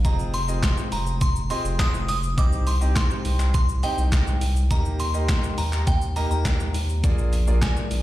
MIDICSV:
0, 0, Header, 1, 5, 480
1, 0, Start_track
1, 0, Key_signature, -3, "minor"
1, 0, Tempo, 582524
1, 39, Time_signature, 4, 2, 24, 8
1, 6613, End_track
2, 0, Start_track
2, 0, Title_t, "Synth bell"
2, 0, Program_c, 0, 98
2, 40, Note_on_c, 0, 82, 94
2, 280, Note_on_c, 0, 84, 100
2, 287, Note_off_c, 0, 82, 0
2, 761, Note_on_c, 0, 82, 95
2, 774, Note_off_c, 0, 84, 0
2, 1001, Note_on_c, 0, 84, 104
2, 1007, Note_off_c, 0, 82, 0
2, 1231, Note_off_c, 0, 84, 0
2, 1241, Note_on_c, 0, 84, 101
2, 1464, Note_off_c, 0, 84, 0
2, 1481, Note_on_c, 0, 87, 105
2, 1712, Note_off_c, 0, 87, 0
2, 1722, Note_on_c, 0, 87, 104
2, 1944, Note_off_c, 0, 87, 0
2, 1961, Note_on_c, 0, 86, 104
2, 2202, Note_on_c, 0, 84, 94
2, 2207, Note_off_c, 0, 86, 0
2, 2424, Note_off_c, 0, 84, 0
2, 2442, Note_on_c, 0, 84, 98
2, 2911, Note_off_c, 0, 84, 0
2, 2921, Note_on_c, 0, 84, 98
2, 3143, Note_off_c, 0, 84, 0
2, 3161, Note_on_c, 0, 79, 81
2, 3607, Note_off_c, 0, 79, 0
2, 3879, Note_on_c, 0, 82, 102
2, 4119, Note_on_c, 0, 84, 108
2, 4126, Note_off_c, 0, 82, 0
2, 4598, Note_on_c, 0, 82, 100
2, 4613, Note_off_c, 0, 84, 0
2, 4822, Note_off_c, 0, 82, 0
2, 4839, Note_on_c, 0, 79, 95
2, 5062, Note_off_c, 0, 79, 0
2, 5079, Note_on_c, 0, 82, 95
2, 5190, Note_off_c, 0, 82, 0
2, 5200, Note_on_c, 0, 82, 89
2, 5534, Note_off_c, 0, 82, 0
2, 6279, Note_on_c, 0, 80, 90
2, 6613, Note_off_c, 0, 80, 0
2, 6613, End_track
3, 0, Start_track
3, 0, Title_t, "Grand piano"
3, 0, Program_c, 1, 0
3, 37, Note_on_c, 1, 60, 77
3, 38, Note_on_c, 1, 65, 73
3, 40, Note_on_c, 1, 68, 72
3, 41, Note_on_c, 1, 75, 86
3, 283, Note_off_c, 1, 60, 0
3, 284, Note_off_c, 1, 65, 0
3, 285, Note_off_c, 1, 68, 0
3, 285, Note_off_c, 1, 75, 0
3, 396, Note_on_c, 1, 60, 73
3, 398, Note_on_c, 1, 65, 66
3, 400, Note_on_c, 1, 68, 69
3, 401, Note_on_c, 1, 75, 82
3, 970, Note_off_c, 1, 60, 0
3, 971, Note_off_c, 1, 65, 0
3, 972, Note_off_c, 1, 68, 0
3, 972, Note_off_c, 1, 75, 0
3, 1236, Note_on_c, 1, 60, 74
3, 1238, Note_on_c, 1, 65, 66
3, 1240, Note_on_c, 1, 68, 68
3, 1241, Note_on_c, 1, 75, 84
3, 1728, Note_off_c, 1, 60, 0
3, 1729, Note_off_c, 1, 65, 0
3, 1730, Note_off_c, 1, 68, 0
3, 1730, Note_off_c, 1, 75, 0
3, 1956, Note_on_c, 1, 60, 79
3, 1957, Note_on_c, 1, 63, 70
3, 1959, Note_on_c, 1, 67, 71
3, 1961, Note_on_c, 1, 75, 83
3, 2203, Note_off_c, 1, 60, 0
3, 2204, Note_off_c, 1, 63, 0
3, 2204, Note_off_c, 1, 67, 0
3, 2205, Note_off_c, 1, 75, 0
3, 2316, Note_on_c, 1, 60, 77
3, 2318, Note_on_c, 1, 63, 70
3, 2319, Note_on_c, 1, 67, 71
3, 2321, Note_on_c, 1, 75, 81
3, 2890, Note_off_c, 1, 60, 0
3, 2891, Note_off_c, 1, 63, 0
3, 2891, Note_off_c, 1, 67, 0
3, 2892, Note_off_c, 1, 75, 0
3, 3157, Note_on_c, 1, 60, 72
3, 3158, Note_on_c, 1, 63, 70
3, 3159, Note_on_c, 1, 67, 69
3, 3160, Note_on_c, 1, 75, 82
3, 3648, Note_off_c, 1, 60, 0
3, 3649, Note_off_c, 1, 63, 0
3, 3650, Note_off_c, 1, 67, 0
3, 3650, Note_off_c, 1, 75, 0
3, 3877, Note_on_c, 1, 58, 78
3, 3878, Note_on_c, 1, 63, 71
3, 3879, Note_on_c, 1, 67, 69
3, 3881, Note_on_c, 1, 75, 86
3, 4123, Note_off_c, 1, 58, 0
3, 4124, Note_off_c, 1, 63, 0
3, 4124, Note_off_c, 1, 67, 0
3, 4125, Note_off_c, 1, 75, 0
3, 4236, Note_on_c, 1, 58, 76
3, 4237, Note_on_c, 1, 63, 70
3, 4238, Note_on_c, 1, 67, 68
3, 4239, Note_on_c, 1, 75, 80
3, 4810, Note_off_c, 1, 58, 0
3, 4810, Note_off_c, 1, 63, 0
3, 4811, Note_off_c, 1, 67, 0
3, 4812, Note_off_c, 1, 75, 0
3, 5077, Note_on_c, 1, 58, 77
3, 5078, Note_on_c, 1, 63, 68
3, 5079, Note_on_c, 1, 67, 69
3, 5081, Note_on_c, 1, 75, 82
3, 5569, Note_off_c, 1, 58, 0
3, 5569, Note_off_c, 1, 63, 0
3, 5570, Note_off_c, 1, 67, 0
3, 5570, Note_off_c, 1, 75, 0
3, 5797, Note_on_c, 1, 58, 92
3, 5799, Note_on_c, 1, 65, 89
3, 5800, Note_on_c, 1, 68, 86
3, 5801, Note_on_c, 1, 74, 105
3, 6043, Note_off_c, 1, 58, 0
3, 6044, Note_off_c, 1, 65, 0
3, 6045, Note_off_c, 1, 68, 0
3, 6045, Note_off_c, 1, 74, 0
3, 6157, Note_on_c, 1, 58, 78
3, 6158, Note_on_c, 1, 65, 67
3, 6159, Note_on_c, 1, 68, 67
3, 6161, Note_on_c, 1, 74, 84
3, 6613, Note_off_c, 1, 58, 0
3, 6613, Note_off_c, 1, 65, 0
3, 6613, Note_off_c, 1, 68, 0
3, 6613, Note_off_c, 1, 74, 0
3, 6613, End_track
4, 0, Start_track
4, 0, Title_t, "Sub bass"
4, 0, Program_c, 2, 38
4, 39, Note_on_c, 2, 29, 105
4, 631, Note_off_c, 2, 29, 0
4, 759, Note_on_c, 2, 29, 90
4, 1253, Note_off_c, 2, 29, 0
4, 1359, Note_on_c, 2, 29, 87
4, 1959, Note_on_c, 2, 36, 101
4, 1971, Note_off_c, 2, 29, 0
4, 2551, Note_off_c, 2, 36, 0
4, 2679, Note_on_c, 2, 36, 91
4, 3172, Note_off_c, 2, 36, 0
4, 3278, Note_on_c, 2, 36, 93
4, 3879, Note_on_c, 2, 39, 106
4, 3891, Note_off_c, 2, 36, 0
4, 4471, Note_off_c, 2, 39, 0
4, 4599, Note_on_c, 2, 39, 92
4, 5092, Note_off_c, 2, 39, 0
4, 5199, Note_on_c, 2, 39, 90
4, 5799, Note_on_c, 2, 34, 105
4, 5811, Note_off_c, 2, 39, 0
4, 6391, Note_off_c, 2, 34, 0
4, 6519, Note_on_c, 2, 34, 90
4, 6613, Note_off_c, 2, 34, 0
4, 6613, End_track
5, 0, Start_track
5, 0, Title_t, "Drums"
5, 39, Note_on_c, 9, 36, 117
5, 39, Note_on_c, 9, 42, 82
5, 39, Note_on_c, 9, 82, 84
5, 121, Note_off_c, 9, 42, 0
5, 121, Note_off_c, 9, 82, 0
5, 122, Note_off_c, 9, 36, 0
5, 160, Note_on_c, 9, 82, 54
5, 242, Note_off_c, 9, 82, 0
5, 278, Note_on_c, 9, 46, 81
5, 278, Note_on_c, 9, 82, 61
5, 360, Note_off_c, 9, 46, 0
5, 360, Note_off_c, 9, 82, 0
5, 399, Note_on_c, 9, 82, 87
5, 481, Note_off_c, 9, 82, 0
5, 519, Note_on_c, 9, 36, 118
5, 520, Note_on_c, 9, 42, 69
5, 520, Note_on_c, 9, 82, 69
5, 521, Note_on_c, 9, 39, 120
5, 524, Note_on_c, 9, 38, 92
5, 602, Note_off_c, 9, 36, 0
5, 603, Note_off_c, 9, 39, 0
5, 603, Note_off_c, 9, 42, 0
5, 603, Note_off_c, 9, 82, 0
5, 606, Note_off_c, 9, 38, 0
5, 640, Note_on_c, 9, 82, 57
5, 722, Note_off_c, 9, 82, 0
5, 758, Note_on_c, 9, 46, 88
5, 758, Note_on_c, 9, 82, 61
5, 840, Note_off_c, 9, 46, 0
5, 840, Note_off_c, 9, 82, 0
5, 878, Note_on_c, 9, 82, 71
5, 961, Note_off_c, 9, 82, 0
5, 998, Note_on_c, 9, 42, 78
5, 998, Note_on_c, 9, 82, 78
5, 1000, Note_on_c, 9, 36, 106
5, 1080, Note_off_c, 9, 42, 0
5, 1080, Note_off_c, 9, 82, 0
5, 1082, Note_off_c, 9, 36, 0
5, 1119, Note_on_c, 9, 82, 63
5, 1201, Note_off_c, 9, 82, 0
5, 1238, Note_on_c, 9, 46, 72
5, 1238, Note_on_c, 9, 82, 54
5, 1320, Note_off_c, 9, 46, 0
5, 1320, Note_off_c, 9, 82, 0
5, 1360, Note_on_c, 9, 82, 75
5, 1442, Note_off_c, 9, 82, 0
5, 1477, Note_on_c, 9, 36, 110
5, 1477, Note_on_c, 9, 42, 68
5, 1477, Note_on_c, 9, 82, 70
5, 1480, Note_on_c, 9, 39, 111
5, 1483, Note_on_c, 9, 38, 83
5, 1560, Note_off_c, 9, 36, 0
5, 1560, Note_off_c, 9, 42, 0
5, 1560, Note_off_c, 9, 82, 0
5, 1562, Note_off_c, 9, 39, 0
5, 1566, Note_off_c, 9, 38, 0
5, 1600, Note_on_c, 9, 82, 56
5, 1683, Note_off_c, 9, 82, 0
5, 1718, Note_on_c, 9, 46, 86
5, 1718, Note_on_c, 9, 82, 61
5, 1800, Note_off_c, 9, 46, 0
5, 1800, Note_off_c, 9, 82, 0
5, 1840, Note_on_c, 9, 82, 68
5, 1923, Note_off_c, 9, 82, 0
5, 1959, Note_on_c, 9, 36, 117
5, 1959, Note_on_c, 9, 42, 81
5, 1959, Note_on_c, 9, 82, 81
5, 2042, Note_off_c, 9, 36, 0
5, 2042, Note_off_c, 9, 42, 0
5, 2042, Note_off_c, 9, 82, 0
5, 2080, Note_on_c, 9, 82, 52
5, 2162, Note_off_c, 9, 82, 0
5, 2198, Note_on_c, 9, 46, 85
5, 2198, Note_on_c, 9, 82, 60
5, 2280, Note_off_c, 9, 46, 0
5, 2280, Note_off_c, 9, 82, 0
5, 2318, Note_on_c, 9, 82, 85
5, 2401, Note_off_c, 9, 82, 0
5, 2439, Note_on_c, 9, 36, 116
5, 2440, Note_on_c, 9, 39, 120
5, 2440, Note_on_c, 9, 42, 67
5, 2440, Note_on_c, 9, 82, 69
5, 2444, Note_on_c, 9, 38, 94
5, 2522, Note_off_c, 9, 36, 0
5, 2522, Note_off_c, 9, 42, 0
5, 2522, Note_off_c, 9, 82, 0
5, 2523, Note_off_c, 9, 39, 0
5, 2526, Note_off_c, 9, 38, 0
5, 2560, Note_on_c, 9, 82, 56
5, 2642, Note_off_c, 9, 82, 0
5, 2678, Note_on_c, 9, 46, 83
5, 2678, Note_on_c, 9, 82, 63
5, 2760, Note_off_c, 9, 46, 0
5, 2760, Note_off_c, 9, 82, 0
5, 2798, Note_on_c, 9, 82, 71
5, 2800, Note_on_c, 9, 39, 69
5, 2880, Note_off_c, 9, 82, 0
5, 2882, Note_off_c, 9, 39, 0
5, 2918, Note_on_c, 9, 42, 79
5, 2918, Note_on_c, 9, 82, 77
5, 2920, Note_on_c, 9, 36, 105
5, 3000, Note_off_c, 9, 42, 0
5, 3000, Note_off_c, 9, 82, 0
5, 3002, Note_off_c, 9, 36, 0
5, 3039, Note_on_c, 9, 82, 57
5, 3121, Note_off_c, 9, 82, 0
5, 3157, Note_on_c, 9, 46, 77
5, 3157, Note_on_c, 9, 82, 53
5, 3240, Note_off_c, 9, 46, 0
5, 3240, Note_off_c, 9, 82, 0
5, 3280, Note_on_c, 9, 82, 76
5, 3362, Note_off_c, 9, 82, 0
5, 3397, Note_on_c, 9, 36, 110
5, 3397, Note_on_c, 9, 42, 72
5, 3397, Note_on_c, 9, 82, 73
5, 3399, Note_on_c, 9, 39, 104
5, 3403, Note_on_c, 9, 38, 86
5, 3479, Note_off_c, 9, 36, 0
5, 3479, Note_off_c, 9, 42, 0
5, 3479, Note_off_c, 9, 82, 0
5, 3482, Note_off_c, 9, 39, 0
5, 3485, Note_off_c, 9, 38, 0
5, 3520, Note_on_c, 9, 82, 58
5, 3602, Note_off_c, 9, 82, 0
5, 3637, Note_on_c, 9, 46, 89
5, 3637, Note_on_c, 9, 82, 63
5, 3720, Note_off_c, 9, 46, 0
5, 3720, Note_off_c, 9, 82, 0
5, 3760, Note_on_c, 9, 82, 69
5, 3842, Note_off_c, 9, 82, 0
5, 3878, Note_on_c, 9, 36, 118
5, 3878, Note_on_c, 9, 42, 86
5, 3878, Note_on_c, 9, 82, 83
5, 3961, Note_off_c, 9, 36, 0
5, 3961, Note_off_c, 9, 42, 0
5, 3961, Note_off_c, 9, 82, 0
5, 3999, Note_on_c, 9, 82, 52
5, 4081, Note_off_c, 9, 82, 0
5, 4117, Note_on_c, 9, 46, 83
5, 4117, Note_on_c, 9, 82, 60
5, 4199, Note_off_c, 9, 46, 0
5, 4199, Note_off_c, 9, 82, 0
5, 4238, Note_on_c, 9, 82, 86
5, 4320, Note_off_c, 9, 82, 0
5, 4359, Note_on_c, 9, 36, 117
5, 4359, Note_on_c, 9, 39, 124
5, 4359, Note_on_c, 9, 42, 74
5, 4359, Note_on_c, 9, 82, 69
5, 4363, Note_on_c, 9, 38, 95
5, 4441, Note_off_c, 9, 36, 0
5, 4441, Note_off_c, 9, 42, 0
5, 4441, Note_off_c, 9, 82, 0
5, 4442, Note_off_c, 9, 39, 0
5, 4445, Note_off_c, 9, 38, 0
5, 4479, Note_on_c, 9, 82, 59
5, 4561, Note_off_c, 9, 82, 0
5, 4596, Note_on_c, 9, 46, 87
5, 4596, Note_on_c, 9, 82, 65
5, 4679, Note_off_c, 9, 46, 0
5, 4679, Note_off_c, 9, 82, 0
5, 4717, Note_on_c, 9, 82, 73
5, 4719, Note_on_c, 9, 39, 70
5, 4800, Note_off_c, 9, 82, 0
5, 4802, Note_off_c, 9, 39, 0
5, 4837, Note_on_c, 9, 42, 76
5, 4837, Note_on_c, 9, 82, 77
5, 4839, Note_on_c, 9, 36, 108
5, 4920, Note_off_c, 9, 42, 0
5, 4920, Note_off_c, 9, 82, 0
5, 4922, Note_off_c, 9, 36, 0
5, 4958, Note_on_c, 9, 82, 60
5, 5040, Note_off_c, 9, 82, 0
5, 5077, Note_on_c, 9, 46, 76
5, 5077, Note_on_c, 9, 82, 55
5, 5159, Note_off_c, 9, 46, 0
5, 5159, Note_off_c, 9, 82, 0
5, 5199, Note_on_c, 9, 82, 71
5, 5282, Note_off_c, 9, 82, 0
5, 5317, Note_on_c, 9, 36, 115
5, 5317, Note_on_c, 9, 42, 69
5, 5317, Note_on_c, 9, 82, 71
5, 5319, Note_on_c, 9, 39, 107
5, 5323, Note_on_c, 9, 38, 82
5, 5399, Note_off_c, 9, 36, 0
5, 5399, Note_off_c, 9, 42, 0
5, 5399, Note_off_c, 9, 82, 0
5, 5402, Note_off_c, 9, 39, 0
5, 5405, Note_off_c, 9, 38, 0
5, 5440, Note_on_c, 9, 82, 55
5, 5522, Note_off_c, 9, 82, 0
5, 5558, Note_on_c, 9, 46, 88
5, 5558, Note_on_c, 9, 82, 64
5, 5640, Note_off_c, 9, 46, 0
5, 5640, Note_off_c, 9, 82, 0
5, 5680, Note_on_c, 9, 82, 70
5, 5762, Note_off_c, 9, 82, 0
5, 5799, Note_on_c, 9, 36, 123
5, 5799, Note_on_c, 9, 42, 79
5, 5799, Note_on_c, 9, 82, 79
5, 5881, Note_off_c, 9, 36, 0
5, 5882, Note_off_c, 9, 42, 0
5, 5882, Note_off_c, 9, 82, 0
5, 5919, Note_on_c, 9, 82, 55
5, 6002, Note_off_c, 9, 82, 0
5, 6037, Note_on_c, 9, 46, 81
5, 6037, Note_on_c, 9, 82, 62
5, 6120, Note_off_c, 9, 46, 0
5, 6120, Note_off_c, 9, 82, 0
5, 6158, Note_on_c, 9, 82, 83
5, 6241, Note_off_c, 9, 82, 0
5, 6279, Note_on_c, 9, 36, 114
5, 6280, Note_on_c, 9, 39, 121
5, 6280, Note_on_c, 9, 42, 69
5, 6280, Note_on_c, 9, 82, 72
5, 6283, Note_on_c, 9, 38, 94
5, 6362, Note_off_c, 9, 36, 0
5, 6362, Note_off_c, 9, 42, 0
5, 6362, Note_off_c, 9, 82, 0
5, 6363, Note_off_c, 9, 39, 0
5, 6366, Note_off_c, 9, 38, 0
5, 6400, Note_on_c, 9, 82, 56
5, 6482, Note_off_c, 9, 82, 0
5, 6517, Note_on_c, 9, 46, 86
5, 6517, Note_on_c, 9, 82, 62
5, 6600, Note_off_c, 9, 46, 0
5, 6600, Note_off_c, 9, 82, 0
5, 6613, End_track
0, 0, End_of_file